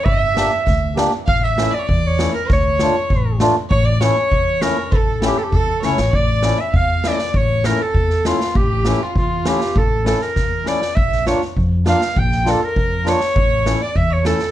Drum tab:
SD |--o-o-o-|--o---o-|o-o---o-|--o---o-|
BD |o---o---|o---o---|o---o---|o---o---|

SD |--o---oo|--o---oo|--o--ooo|--o---oo|
BD |o---o---|o---o---|o---o---|o---o---|

SD |--ooo-oo|-ooo--oo|-oo---oo|--o---oo|
BD |o---o---|o---o---|o---o---|o---o---|